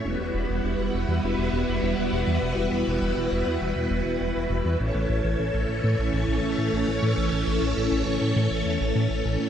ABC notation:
X:1
M:4/4
L:1/16
Q:1/4=101
K:Edor
V:1 name="String machine"
[G,B,EFB]16- | [G,B,EFB]16 | [E,A,CAc]16- | [E,A,CAc]16 |]
V:2 name="Analog synth bass" clef=bass
E,,, E,,, E,,, E,,, E,,, E,,, E,,, E,, E,,, E,,, E,,, E,,, E,,, E,,, E,,, E,, | E,,, E,,, E,,, E,,, E,,, E,,, E,,, E,, E,,, E,,, E,,, E,,, E,,, E,,, E,,, E,, | A,,, A,,, A,,, A,,, A,,, A,,, A,,, A,, A,,, A,,, A,,, A,,, A,,, A,,, A,,, A,, | A,,, A,,, A,,, A,,, A,,, A,,, A,,, A,, A,, A,,, E,, A,,, A,, A,,, A,,, A,, |]